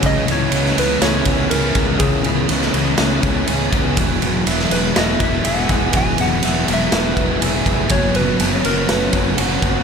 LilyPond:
<<
  \new Staff \with { instrumentName = "Soft synth lead" } { \time 4/4 \key cis \dorian \tempo 4 = 122 dis''8 cis''4 b'8 cis''4 ais'4 | gis'2 r2 | r4. b'8 dis''8 e''8 fis''4 | gis''8 fis''4 e''8 b'4. r8 |
cis''8 b'4 ais'8 b'2 | }
  \new Staff \with { instrumentName = "Clean electric guitar" } { \time 4/4 \key cis \dorian e8 b8 cis'8 gis'8 cis'8 e8 cis'8 gis'8 | e8 b8 cis'8 gis'8 cis'8 e8 cis'8 gis'8 | fis8 b8 e'8 gis'8 e'8 fis8 e'8 gis'8 | fis8 b8 e'8 gis'8 e'8 fis8 e'8 gis'8 |
fis8 b8 cis'8 fis'8 cis'8 fis8 cis'8 fis'8 | }
  \new Staff \with { instrumentName = "Distorted electric guitar" } { \time 4/4 \key cis \dorian cis8 e8 b8 gis8 e'8 b8 e'8 b8 | cis8 e8 b8 gis8 e'8 b8 e'8 b8 | e,8 fis8 b8 gis8 e'8 b8 e'8 b8 | e,8 fis8 b8 gis8 e'8 b8 e'8 b8 |
fis,8 fis8 cis'8 b8 fis'8 cis'8 fis'8 cis'8 | }
  \new Staff \with { instrumentName = "Overdriven electric guitar" } { \time 4/4 \key cis \dorian cis8 e8 b8 e8 b8 cis'8 gis'8 b8 | cis8 e8 b8 e8 b8 cis'8 gis'8 b8 | e8 fis8 b8 fis8 b8 e'8 gis'8 b8 | e8 fis8 b8 fis8 b8 e'8 gis'8 b8 |
fis,8 fis8 b8 fis8 b8 cis'8 fis'8 b8 | }
  \new Staff \with { instrumentName = "Fingered electric bass" } { \clef bass \time 4/4 \key cis \dorian cis,8 cis,8 cis,8 cis,8 cis,8 cis,8 cis,8 cis,8 | cis,8 cis,8 cis,8 cis,8 cis,8 cis,8 cis,8 cis,8 | e,,8 e,,8 e,,8 e,,8 e,,8 e,,8 e,,8 e,,8 | e,,8 e,,8 e,,8 e,,8 e,,8 e,,8 e,,8 eis,,8 |
fis,,8 fis,,8 fis,,8 fis,,8 fis,,8 fis,,8 fis,,8 fis,,8 | }
  \new DrumStaff \with { instrumentName = "Drums" } \drummode { \time 4/4 <bd cymr>8 cymr8 cymr16 sn16 cymr8 <cymr sn>8 <bd cymr>8 cymr8 <bd cymr>8 | <bd cymr>8 cymr8 cymr16 sn16 cymr8 <cymr sn>8 <bd cymr>8 cymr8 <bd cymr>8 | <bd cymr>8 cymr8 cymr16 sn16 cymr8 <cymr sn>8 <bd cymr>8 cymr8 <bd cymr>8 | <bd cymr>8 cymr8 cymr8 cymr8 <cymr sn>8 <bd cymr>8 cymr8 <bd cymr>8 |
<bd cymr>8 cymr8 cymr8 cymr8 <cymr sn>8 <bd cymr>8 cymr8 <bd cymr>8 | }
>>